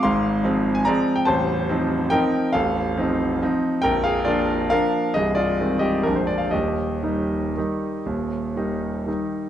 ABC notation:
X:1
M:3/4
L:1/16
Q:1/4=138
K:Eb
V:1 name="Grand piano"
[fc']6- [fc'] a [db]3 g | [c=a]8 [Bg]4 | [=Af]6 z6 | [Bg]2 [Af]2 [Fd]4 [Bf]4 |
[Ae]2 [Fd]4 [Ge]2 B c d f | [Ge]12- | [Ge]8- [Ge]2 z2 |]
V:2 name="Grand piano" clef=bass
[A,,,A,,]4 [F,A,C]4 [F,A,C]4 | [=A,,,,=A,,,]4 [F,CE]4 [F,CE]4 | [=A,,,,=A,,,]4 [F,CE]4 [F,CE]4 | [B,,,,B,,,]4 [F,B,D]4 [F,B,D]4 |
[C,,,C,,]4 [E,A,C]4 [B,,,,B,,,F,A,D]4 | [E,,,E,,]4 [E,G,E]4 [E,G,E]4 | [E,,,E,,]4 [E,G,E]4 [E,G,E]4 |]